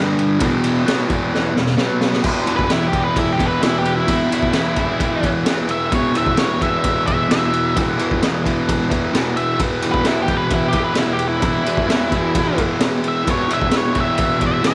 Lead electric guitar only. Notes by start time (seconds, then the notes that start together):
2.56 B4
2.72 E4
2.88 G4
3.04 B4
3.18 E4
3.33 G4
3.46 B4
3.62 E4
3.78 G4
3.96 E4
5.71 E5
5.94 C#5
6.17 E5
6.39 C#5
6.63 E5
7.07 E5
7.32 E5
9.37 E5
9.92 B4
10.07 E4
10.22 G4
10.37 B4
10.54 E4
10.68 G4
10.84 B4
10.98 E4
11.13 G4
11.29 E4
13.08 E5
13.30 C#5
13.53 E5
13.77 C#5
14.00 E5
14.47 E5
14.67 E5